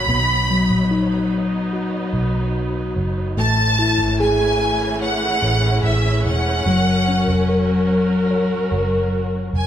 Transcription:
0.00 3.34 F#3 medium
0.00 0.11 C#5 medium
0.00 1.29 B5 loud
0.08 0.66 B1 loud
0.08 3.34 B3 medium
0.08 3.35 B3 medium
0.08 3.34 D#4 medium
0.50 2.10 F#3 medium
0.70 2.10 A#1 medium
0.91 2.51 D#4 medium
1.73 3.33 F#4 medium
2.13 2.92 B1 medium
2.96 3.34 F#1 medium
3.37 3.95 A1 medium
3.37 6.63 E3 medium
3.37 6.62 A3 medium
3.37 6.63 A3 medium
3.37 9.67 C#4 medium
3.37 4.16 A5 loud
3.79 5.39 E4 medium
3.98 5.38 G#1 medium
4.20 5.80 G#4 medium
4.20 4.98 G#5 loud
5.02 6.62 C#5 medium
5.02 5.80 F#5 loud
5.42 5.81 A1 medium
5.83 6.22 A1 medium
5.83 6.22 E5 medium
6.24 6.63 E1 medium
6.24 7.90 F#5 loud
6.66 7.24 F#1 medium
6.66 9.67 F#3 medium
6.66 9.67 F#4 medium
6.66 9.67 A#4 medium
7.08 8.68 C#4 medium
7.28 8.68 F1 medium
7.49 9.09 A#4 medium
8.31 9.67 C#5 medium
8.72 9.50 F#1 medium
9.53 9.67 F1 medium
9.53 9.67 G#5 medium

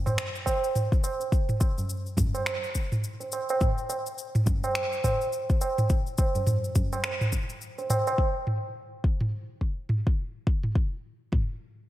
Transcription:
0.06 mid tom medium
0.06 tabla na medium
0.06 tabla tin soft
0.06 shaker soft
0.18 finger snap medium
0.18 shaker soft
0.35 shaker soft
0.46 kick medium
0.46 tabla na medium
0.46 shaker medium
0.64 shaker soft
0.75 mid tom medium
0.75 shaker soft
0.92 kick loud
0.92 shaker soft
1.04 tabla na medium
1.04 shaker medium
1.20 tabla tin soft
1.20 shaker soft
1.32 kick loud
1.32 shaker soft
1.49 mid tom medium
1.49 shaker soft
1.60 kick loud
1.60 tabla na medium
1.60 tabla tin medium
1.60 shaker medium
1.78 tabla ge medium
1.78 shaker soft
1.89 shaker soft
2.06 shaker soft
2.17 kick loud
2.17 mid tom medium
2.17 tabla ge loud
2.17 shaker medium
2.34 tabla na medium
2.34 tabla tin soft
2.34 shaker soft
2.46 finger snap medium
2.46 tabla tin medium
2.46 shaker soft
2.64 shaker soft
2.75 kick medium
2.75 shaker medium
2.92 mid tom medium
2.92 shaker soft
3.04 shaker soft
3.20 tabla tin medium
3.20 shaker soft
3.32 tabla na medium
3.32 tabla tin soft
3.32 shaker medium
3.49 tabla na medium
3.49 shaker soft
3.61 kick loud
3.61 mid tom medium
3.61 shaker soft
3.78 shaker soft
3.89 tabla na medium
3.89 tabla tin soft
3.89 shaker medium
4.06 shaker soft
4.18 shaker soft
4.35 mid tom medium
4.35 shaker soft
4.46 kick loud
4.46 tabla ge medium
4.46 shaker medium
4.64 tabla na medium
4.64 tabla tin soft
4.64 shaker soft
4.75 finger snap medium
4.75 shaker soft
4.93 shaker soft
5.04 kick medium
5.04 mid tom medium
5.04 tabla na medium
5.04 shaker medium
5.21 shaker soft
5.33 shaker soft
5.50 kick loud
5.50 shaker soft
5.61 tabla na medium
5.61 shaker medium
5.78 mid tom medium
5.78 tabla tin medium
5.78 shaker soft
5.90 kick loud
5.90 shaker soft
6.07 shaker soft
6.18 kick loud
6.18 tabla na medium
6.18 tabla tin soft
6.18 shaker medium
6.35 tabla ge medium
6.35 shaker soft
6.47 mid tom medium
6.47 shaker soft
6.64 shaker soft
6.75 kick loud
6.75 tabla ge medium
6.75 shaker medium
6.93 tabla na medium
6.93 tabla tin medium
6.93 shaker soft
7.04 finger snap medium
7.04 tabla tin medium
7.04 shaker soft
7.21 mid tom medium
7.21 shaker soft
7.32 kick medium
7.32 shaker medium
7.50 shaker soft
7.61 shaker soft
7.78 tabla tin medium
7.78 shaker soft
7.90 mid tom medium
7.90 tabla na medium
7.90 tabla tin soft
7.90 shaker medium
8.07 tabla na medium
8.07 shaker soft
8.18 kick loud
8.47 mid tom medium
9.04 kick medium
9.21 mid tom medium
9.61 kick soft
9.89 mid tom medium
10.07 kick medium
10.47 kick loud
10.63 mid tom medium
10.75 kick medium
11.32 kick loud
11.32 mid tom medium

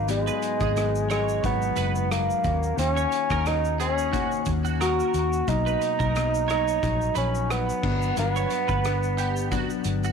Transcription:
0.00 0.29 G#1 loud
0.07 0.73 G#2 medium
0.07 0.75 F#3 medium
0.07 1.06 G#3 loud
0.07 0.75 B3 medium
0.07 0.76 D#4 medium
0.07 closed hi-hat medium
0.07 shaker medium
0.27 0.42 B4 medium
0.27 shaker medium
0.42 closed hi-hat soft
0.42 shaker soft
0.60 1.39 G#1 loud
0.60 0.75 G#4 medium
0.60 kick loud
0.60 shaker medium
0.74 1.41 G#2 medium
0.74 1.43 F#3 medium
0.74 1.43 B3 medium
0.74 1.44 D#4 medium
0.74 cross-stick medium
0.74 closed hi-hat medium
0.74 shaker medium
0.95 shaker soft
1.10 1.42 G#3 loud
1.10 1.59 C#5 medium
1.10 cross-stick medium
1.10 closed hi-hat medium
1.10 shaker medium
1.29 shaker medium
1.43 1.71 G#1 loud
1.43 2.44 G#2 medium
1.43 2.76 F#3 medium
1.43 2.08 B3 loud
1.43 2.45 D#4 medium
1.43 kick loud
1.43 closed hi-hat medium
1.43 shaker medium
1.62 shaker medium
1.76 2.31 F#1 loud
1.76 1.95 B4 medium
1.76 closed hi-hat medium
1.76 shaker medium
1.95 shaker soft
2.12 2.75 A#3 loud
2.12 cross-stick loud
2.12 closed hi-hat medium
2.12 shaker medium
2.30 shaker medium
2.44 2.71 D#2 loud
2.44 2.76 A#3 soft
2.44 2.78 C#4 soft
2.44 2.78 F#4 medium
2.44 kick medium
2.44 closed hi-hat medium
2.44 shaker medium
2.63 shaker medium
2.76 3.05 D#2 loud
2.76 4.11 D#3 medium
2.76 4.12 A#3 medium
2.76 3.49 C#4 loud
2.76 4.13 C#4 medium
2.76 4.15 F#4 loud
2.76 closed hi-hat medium
2.76 shaker medium
2.96 3.11 C#5 medium
2.96 shaker medium
3.12 closed hi-hat soft
3.12 shaker soft
3.30 4.28 D#2 loud
3.30 3.45 A#4 medium
3.30 kick loud
3.30 cross-stick loud
3.30 shaker soft
3.46 3.80 D#4 loud
3.46 cross-stick medium
3.46 closed hi-hat medium
3.46 shaker medium
3.65 shaker soft
3.80 4.51 C#4 loud
3.80 4.11 G#4 medium
3.80 closed hi-hat medium
3.80 shaker medium
3.98 shaker medium
4.12 5.47 D#3 medium
4.12 5.48 A#3 medium
4.12 5.48 C#4 medium
4.12 4.30 F#4 medium
4.12 7.65 F#4 medium
4.12 kick loud
4.12 closed hi-hat medium
4.12 shaker medium
4.32 shaker soft
4.46 5.01 D#2 loud
4.46 kick medium
4.46 closed hi-hat medium
4.46 shaker medium
4.65 4.79 F#4 medium
4.65 shaker medium
4.80 5.50 F#4 loud
4.80 5.30 A#4 medium
4.80 cross-stick medium
4.80 closed hi-hat medium
4.80 shaker medium
5.00 shaker medium
5.14 5.41 D#2 loud
5.14 closed hi-hat soft
5.14 shaker medium
5.33 shaker medium
5.47 5.75 B1 loud
5.47 6.13 B2 medium
5.47 6.15 F#3 medium
5.47 6.15 A#3 medium
5.47 6.15 D#4 medium
5.47 6.49 D#4 loud
5.47 kick loud
5.47 closed hi-hat medium
5.47 shaker medium
5.66 5.81 B4 medium
5.66 shaker medium
5.81 closed hi-hat soft
5.81 shaker soft
5.99 6.79 B1 loud
5.99 6.14 A#4 medium
5.99 kick loud
5.99 shaker medium
6.14 6.82 B2 medium
6.14 6.82 F#3 medium
6.14 6.83 A#3 medium
6.14 6.82 D#4 medium
6.14 cross-stick medium
6.14 closed hi-hat medium
6.14 shaker medium
6.34 shaker medium
6.48 7.13 D#4 loud
6.48 6.97 C#5 medium
6.48 cross-stick medium
6.48 closed hi-hat medium
6.48 shaker medium
6.68 shaker medium
6.83 7.10 A#1 loud
6.83 7.85 F#3 medium
6.83 7.82 D#4 medium
6.83 kick loud
6.83 closed hi-hat medium
6.83 shaker medium
7.01 shaker soft
7.15 7.70 A#1 loud
7.15 7.52 C#4 medium
7.15 7.33 B4 medium
7.15 closed hi-hat medium
7.15 shaker medium
7.35 shaker soft
7.50 8.18 B3 loud
7.50 cross-stick medium
7.50 closed hi-hat medium
7.50 shaker medium
7.69 shaker medium
7.82 8.10 G1 loud
7.82 8.16 F#3 soft
7.82 8.16 B3 soft
7.82 8.17 D4 soft
7.82 kick loud
7.82 crash medium
8.02 shaker medium
8.16 8.44 G1 loud
8.16 8.82 G2 medium
8.16 8.87 F#3 medium
8.16 8.85 B3 medium
8.16 9.90 B3 loud
8.16 8.85 D4 medium
8.16 closed hi-hat medium
8.16 shaker medium
8.36 8.50 C#5 medium
8.36 shaker medium
8.50 closed hi-hat soft
8.50 shaker soft
8.68 9.66 G1 loud
8.68 8.83 B4 medium
8.68 kick loud
8.68 shaker soft
8.84 9.51 G2 medium
8.84 9.52 B3 medium
8.84 9.52 D4 medium
8.84 cross-stick medium
8.84 closed hi-hat medium
8.84 shaker medium
9.03 shaker medium
9.18 9.50 G4 medium
9.18 closed hi-hat medium
9.18 shaker medium
9.36 shaker medium
9.51 10.12 F#3 loud
9.51 10.12 B3 loud
9.51 10.12 D4 loud
9.51 9.69 F#4 medium
9.51 kick loud
9.51 closed hi-hat medium
9.51 shaker medium
9.70 shaker medium
9.84 10.12 G1 loud
9.84 closed hi-hat medium
9.84 shaker medium
10.04 10.12 F#4 medium
10.04 shaker medium

